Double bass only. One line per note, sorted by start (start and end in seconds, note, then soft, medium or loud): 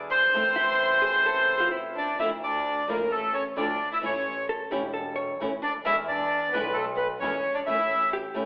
0.00 0.24 E2 medium
0.32 2.08 A1 medium
2.18 2.84 D2 medium
2.88 3.53 A1 medium
3.56 3.76 D2 medium
4.02 4.67 A1 medium
4.71 5.36 E1 medium
5.38 5.58 A1 medium
5.62 5.83 D2 medium
5.84 6.50 E2 medium
6.52 7.18 B1 loud
7.21 7.41 E2 medium
7.45 7.66 G1 medium
7.67 8.33 A1 medium
8.36 8.46 E1 medium